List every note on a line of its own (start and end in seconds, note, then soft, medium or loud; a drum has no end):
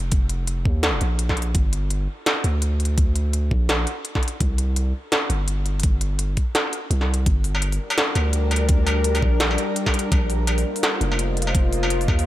0.00 0.64 F1 medium
0.12 kick loud
0.12 closed hi-hat medium
0.29 closed hi-hat medium
0.47 closed hi-hat medium
0.65 1.00 D#2 medium
0.65 kick medium
0.83 snare loud
0.83 closed hi-hat medium
1.01 1.54 A#1 medium
1.01 closed hi-hat medium
1.19 closed hi-hat medium
1.29 kick medium
1.29 snare soft
1.37 closed hi-hat soft
1.42 closed hi-hat medium
1.55 2.07 G1 loud
1.55 kick loud
1.55 closed hi-hat medium
1.73 closed hi-hat medium
1.91 closed hi-hat medium
2.26 snare loud
2.26 closed hi-hat medium
2.44 3.50 D2 medium
2.44 closed hi-hat medium
2.62 closed hi-hat medium
2.80 closed hi-hat soft
2.85 closed hi-hat medium
2.98 kick loud
2.98 closed hi-hat medium
3.16 closed hi-hat medium
3.33 closed hi-hat medium
3.51 3.86 A#1 medium
3.51 kick medium
3.69 snare loud
3.69 closed hi-hat medium
3.87 closed hi-hat medium
4.05 closed hi-hat medium
4.15 kick medium
4.15 snare soft
4.23 closed hi-hat soft
4.28 closed hi-hat medium
4.40 4.93 C2 loud
4.40 kick loud
4.40 closed hi-hat medium
4.58 closed hi-hat medium
4.76 closed hi-hat medium
5.12 snare loud
5.12 closed hi-hat medium
5.30 6.36 G1 medium
5.30 closed hi-hat medium
5.48 closed hi-hat medium
5.66 closed hi-hat soft
5.80 closed hi-hat medium
5.83 kick loud
5.83 closed hi-hat medium
6.01 closed hi-hat medium
6.19 closed hi-hat medium
6.37 kick medium
6.37 closed hi-hat soft
6.55 snare loud
6.55 closed hi-hat medium
6.73 closed hi-hat medium
6.91 7.25 C2 loud
6.91 closed hi-hat medium
7.01 snare soft
7.14 closed hi-hat medium
7.26 7.79 G1 loud
7.26 10.09 G3 medium
7.26 10.09 D4 medium
7.26 10.09 G4 medium
7.26 10.09 A#4 medium
7.26 kick loud
7.26 closed hi-hat medium
7.44 open hi-hat medium
7.55 struck metal medium
7.62 closed hi-hat medium
7.72 open hi-hat medium
7.90 open hi-hat medium
7.90 struck metal medium
7.98 snare loud
7.98 closed hi-hat medium
8.15 9.22 D2 medium
8.15 closed hi-hat medium
8.15 struck metal medium
8.33 closed hi-hat medium
8.51 closed hi-hat soft
8.51 struck metal medium
8.56 closed hi-hat medium
8.69 kick loud
8.69 closed hi-hat medium
8.87 open hi-hat medium
8.87 struck metal medium
9.04 closed hi-hat medium
9.15 open hi-hat medium
9.15 struck metal soft
9.22 9.57 A#1 medium
9.22 kick medium
9.40 snare loud
9.40 closed hi-hat medium
9.51 struck metal medium
9.58 closed hi-hat medium
9.76 closed hi-hat medium
9.86 kick medium
9.86 snare soft
9.86 struck metal medium
9.94 closed hi-hat soft
9.99 closed hi-hat medium
10.12 10.64 A#1 loud
10.12 12.26 A#3 medium
10.12 12.26 F4 medium
10.12 12.26 C5 medium
10.12 12.26 D#5 medium
10.12 kick loud
10.12 closed hi-hat medium
10.12 struck metal medium
10.30 open hi-hat medium
10.47 closed hi-hat medium
10.47 struck metal soft
10.58 open hi-hat medium
10.76 open hi-hat medium
10.83 snare loud
10.83 closed hi-hat medium
10.83 struck metal medium
11.01 12.07 F1 medium
11.01 closed hi-hat medium
11.12 struck metal soft
11.19 closed hi-hat medium
11.37 closed hi-hat soft
11.42 closed hi-hat medium
11.47 struck metal medium
11.55 kick loud
11.55 closed hi-hat medium
11.73 open hi-hat medium
11.83 struck metal medium
11.90 closed hi-hat medium
12.01 open hi-hat medium
12.08 12.26 D#2 medium
12.08 kick medium
12.08 struck metal soft
12.19 open hi-hat medium